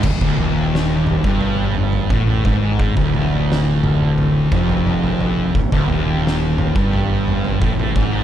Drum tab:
CC |x---------------|----------------|----------------|
SD |----o-----------|----o-----------|----o-----------|
T2 |------o---o-o---|------o---o-o---|------o---o-o---|
FT |o-o---o-o--o-oo-|o-o---o-o--o-oo-|o-o---o-o--o-oo-|
BD |oo-----o----o-o-|oo--------o-----|oo-----o----o-o-|